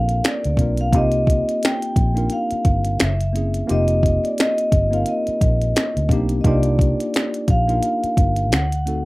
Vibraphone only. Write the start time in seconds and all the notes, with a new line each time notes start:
Already playing: F5
0.27 D5
0.81 F5
0.96 D#5
1.65 G5
2.33 F5
3.02 E5
3.71 D#5
4.24 D5
4.39 D#5
4.93 F5
5.09 D#5
6.41 D#5
6.47 D5
7.50 F5
8.53 F#5